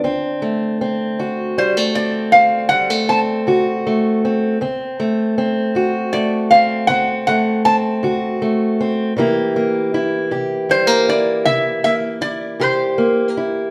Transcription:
0.00 0.72 D2 medium
0.00 4.60 D3 medium
0.04 0.81 C4 medium
0.42 1.57 A3 medium
0.81 1.96 C4 medium
1.19 1.87 D2 medium
1.19 3.47 F#4 medium
1.58 1.77 G3 medium
1.58 1.95 C5 medium
1.77 2.71 A3 soft
1.95 2.34 C4 medium
1.95 2.34 D5 medium
2.32 3.01 D2 medium
2.32 3.09 C4 medium
2.32 2.68 F5 loud
2.69 2.90 G3 medium
2.69 3.09 F#5 medium
2.90 3.85 A3 soft
3.09 4.24 C4 medium
3.09 3.19 A5 medium
3.47 4.15 D2 medium
3.47 4.56 F#4 medium
3.87 4.57 A3 medium
4.25 4.61 C4 medium
4.61 5.29 D2 medium
4.61 5.38 C4 medium
5.00 6.12 A3 medium
5.38 6.51 C4 medium
5.75 6.43 D2 medium
5.75 8.03 F#4 medium
6.13 7.27 A3 medium
6.13 6.52 D5 medium
6.51 6.90 C4 medium
6.51 6.87 F5 medium
6.87 7.57 D2 medium
6.87 7.65 C4 medium
6.87 7.26 F#5 medium
7.27 8.41 A3 medium
7.27 7.62 F#5 medium
7.65 8.79 C4 medium
7.65 7.75 A5 medium
8.03 8.71 D2 medium
8.03 9.12 F#4 medium
8.42 9.12 A3 medium
8.81 9.13 C4 medium
9.17 9.85 C3 medium
9.17 13.71 E3 medium
9.17 9.55 A#3 medium
9.17 9.93 E4 medium
9.17 10.31 G4 medium
9.56 10.69 A#3 medium
9.94 11.07 E4 medium
10.31 10.99 C3 medium
10.31 12.59 G4 medium
10.69 10.87 G3 medium
10.69 11.09 C5 medium
10.87 11.82 A#3 medium
11.09 11.45 E4 medium
11.09 11.45 D5 medium
11.45 12.13 C3 medium
11.45 12.20 E4 medium
11.45 11.83 E5 loud
11.84 12.97 A#3 medium
11.84 11.94 E5 medium
12.21 13.36 E4 medium
12.21 12.60 D5 medium
12.60 13.28 C3 medium
12.60 13.71 G4 medium
12.60 13.30 C5 medium
12.98 13.70 A#3 medium
13.30 13.71 A#4 medium
13.37 13.71 E4 medium

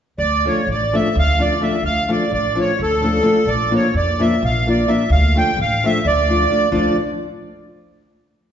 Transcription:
0.18 0.47 D2 medium
0.18 0.45 D5 medium
0.45 0.60 F3 medium
0.45 0.60 A3 soft
0.45 0.60 D4 soft
0.45 0.61 F4 medium
0.45 0.69 C#5 medium
0.67 0.96 A1 medium
0.71 0.95 D5 medium
0.93 1.08 F3 medium
0.93 1.08 A3 medium
0.93 1.08 D4 soft
0.93 1.08 F4 medium
0.93 1.16 E5 medium
1.15 1.55 D2 medium
1.15 1.42 F5 loud
1.38 1.53 F3 soft
1.38 1.53 A3 soft
1.38 1.54 D4 medium
1.38 1.54 F4 medium
1.38 1.62 D5 medium
1.61 1.75 F3 medium
1.61 1.75 A3 soft
1.61 1.76 D4 soft
1.61 1.76 F4 medium
1.61 1.84 E5 medium
1.82 2.11 D2 medium
1.82 2.10 F5 loud
2.08 2.23 F3 medium
2.08 2.23 A3 medium
2.08 2.23 D4 medium
2.08 2.24 F4 medium
2.08 2.32 D5 medium
2.31 2.60 A1 medium
2.31 2.59 D5 medium
2.55 2.71 F3 medium
2.55 2.71 A3 soft
2.55 2.71 D4 medium
2.55 2.71 F4 medium
2.61 2.81 C#5 medium
2.79 3.19 D2 medium
2.79 3.50 A4 medium
3.02 3.17 F3 soft
3.02 3.17 A3 medium
3.02 3.18 D4 medium
3.02 3.18 F4 medium
3.22 3.38 F3 medium
3.22 3.38 A3 medium
3.22 3.38 D4 medium
3.22 3.38 F4 medium
3.45 3.74 A#1 medium
3.45 3.73 D5 medium
3.71 3.86 F3 medium
3.71 3.86 A#3 medium
3.71 3.86 D4 medium
3.71 3.87 F4 medium
3.76 3.94 C#5 medium
3.94 4.23 F2 medium
3.94 4.22 D5 medium
4.19 4.34 F3 medium
4.19 4.35 A#3 medium
4.19 4.35 D4 medium
4.19 4.35 F4 medium
4.19 4.43 E5 medium
4.42 4.83 A#1 medium
4.42 4.68 F5 loud
4.66 4.80 F3 soft
4.66 4.81 A#3 soft
4.66 4.81 D4 soft
4.66 4.81 F4 medium
4.66 4.90 D5 medium
4.88 5.02 F3 soft
4.88 5.02 A#3 soft
4.88 5.03 D4 soft
4.88 5.03 F4 medium
4.88 5.10 E5 medium
5.10 5.38 D2 medium
5.10 5.37 F5 loud
5.35 5.50 F3 medium
5.35 5.50 A3 medium
5.35 5.50 D4 soft
5.35 5.51 F4 medium
5.35 5.59 G5 medium
5.57 5.86 A1 medium
5.61 5.86 F5 medium
5.84 5.98 F3 medium
5.84 5.99 A3 medium
5.84 5.99 D4 medium
5.84 5.99 F4 medium
5.84 6.07 E5 loud
6.05 6.45 D2 medium
6.05 6.69 D5 medium
6.28 6.43 F3 soft
6.28 6.44 A3 soft
6.28 6.44 D4 medium
6.28 6.44 F4 medium
6.50 6.64 F3 soft
6.50 6.65 A3 soft
6.50 6.65 D4 soft
6.50 6.65 F4 medium
6.71 6.96 D2 medium
6.71 6.96 F3 medium
6.71 6.96 A3 medium
6.71 6.96 D4 medium
6.71 6.96 F4 medium
6.71 6.97 D5 medium

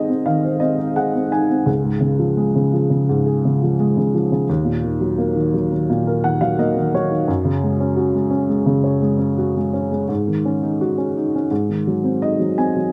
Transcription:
0.00 1.63 G#2 medium
0.00 0.25 D#3 soft
0.00 0.09 C4 medium
0.00 0.78 D#4 soft
0.00 0.93 G#4 medium
0.00 0.25 D#5 medium
0.09 0.59 C4 soft
0.26 1.64 D#3 medium
0.26 0.59 F5 medium
0.44 1.64 C5 soft
0.60 1.13 C4 soft
0.60 0.94 D#5 medium
0.78 1.30 D#4 medium
0.96 1.65 G#4 medium
0.96 1.30 F#5 medium
1.15 1.48 C4 soft
1.31 1.66 D#4 medium
1.31 1.65 G#5 medium
1.49 1.67 C4 soft
1.66 4.44 C#2 medium
1.84 3.08 G#2 soft
2.00 2.54 C#3 soft
2.19 2.72 F3 medium
2.37 3.74 G#3 medium
2.55 2.89 C#3 medium
2.73 3.61 F3 medium
2.90 3.44 C#3 soft
3.09 4.45 G#2 medium
3.26 4.45 G#4 soft
3.45 3.95 C#3 medium
3.63 4.13 F3 medium
3.80 4.47 G#3 medium
3.97 4.31 C#3 soft
4.15 4.48 F3 medium
4.32 4.49 C#3 soft
4.49 7.25 D#2 medium
4.65 5.88 A#2 soft
4.84 5.34 D#3 medium
5.01 5.52 F#3 medium
5.18 6.54 A#3 medium
5.36 5.71 D#3 soft
5.54 6.39 F#3 medium
5.72 6.23 D#3 medium
5.90 7.25 A#2 medium
6.07 7.25 A#4 medium
6.24 6.75 D#3 medium
6.24 6.40 F#5 medium
6.41 6.93 F#3 medium
6.41 6.57 F5 medium
6.59 7.26 A#3 medium
6.59 6.91 D#5 medium
6.77 7.10 D#3 medium
6.94 7.28 F#3 medium
6.94 7.27 C#5 medium
7.11 7.28 D#3 soft
7.28 10.05 F#2 medium
7.45 8.65 C#3 medium
7.63 8.13 G#3 soft
7.80 8.29 C#4 medium
7.97 9.34 F#4 medium
8.15 8.48 G#3 medium
8.30 9.17 C#4 medium
8.49 9.00 G#3 medium
8.66 10.04 C#3 medium
8.84 10.05 C#5 soft
9.02 9.55 G#3 medium
9.18 9.72 C#4 medium
9.38 10.07 F#4 medium
9.56 9.90 G#3 soft
9.73 10.08 C#4 medium
9.92 10.09 G#3 soft
10.08 11.46 G#2 medium
10.27 11.47 D#3 medium
10.45 10.96 C#4 soft
10.63 11.15 D#4 soft
10.81 11.49 F#4 medium
10.98 11.34 C#4 soft
11.17 11.50 D#4 soft
11.35 11.51 C#4 soft
11.51 12.89 G#2 medium
11.69 12.90 D#3 soft
11.87 12.38 F#3 medium
12.03 12.56 C4 soft
12.22 12.91 D#4 medium
12.22 12.55 D#5 medium
12.39 12.75 F#3 soft
12.58 12.92 C4 soft
12.58 12.91 G#5 medium
12.76 12.92 F#3 soft

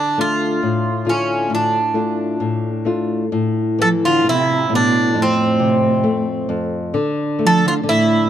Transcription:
0.00 0.60 D3 medium
0.00 0.20 D4 medium
0.18 0.88 A3 soft
0.18 0.89 D4 soft
0.18 0.89 F4 medium
0.18 1.10 F4 medium
0.63 1.48 A2 medium
1.05 1.77 D3 soft
1.05 1.77 A3 soft
1.05 1.78 F4 soft
1.09 1.53 C#4 medium
1.50 2.38 A2 medium
1.55 2.86 D4 medium
1.94 2.68 A3 soft
1.94 2.69 D4 soft
1.94 2.69 F4 soft
2.40 3.30 A2 medium
2.85 3.23 A3 soft
2.85 3.23 D4 soft
2.85 3.24 F4 soft
3.32 4.68 A2 medium
3.79 4.24 E3 soft
3.79 3.92 F3 medium
3.79 3.88 A4 medium
4.05 4.25 D3 medium
4.05 4.28 F4 medium
4.24 4.69 C3 medium
4.24 4.69 C4 soft
4.29 4.74 E4 medium
4.69 5.14 A2 medium
4.69 5.14 B2 medium
4.75 5.20 D4 medium
5.14 6.48 F2 medium
5.14 6.47 A2 medium
5.22 6.49 C4 medium
5.60 6.04 C3 medium
6.04 6.48 A3 medium
6.49 6.93 F2 medium
6.94 7.82 D3 medium
7.39 7.82 A3 medium
7.43 7.63 F3 medium
7.43 7.66 A4 loud
7.65 7.74 D3 medium
7.65 7.73 F4 loud
7.83 8.27 D3 medium
7.88 8.28 A2 medium
7.88 8.29 E4 medium

